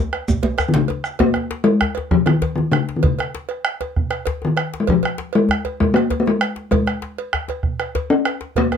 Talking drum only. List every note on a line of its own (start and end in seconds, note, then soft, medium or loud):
0.69 0.77 D#3 medium
0.76 1.22 C#3 medium
1.20 1.65 A#3 loud
1.64 2.13 G#3 medium
2.11 2.28 F3 medium
2.26 2.55 D#3 medium
2.56 2.73 D#3 medium
2.72 2.96 C#3 medium
2.96 3.05 D#3 medium
3.03 3.50 C#3 medium
4.45 4.82 D#3 medium
4.80 4.91 G#3 medium
4.90 5.37 F3 medium
5.35 5.80 G#3 medium
5.80 5.95 G#3 medium
5.94 6.20 A#3 medium
6.20 6.29 A#3 medium
6.27 6.70 G#3 medium
6.71 7.03 G#3 medium
8.10 8.59 C#4 medium
8.58 8.77 A#3 loud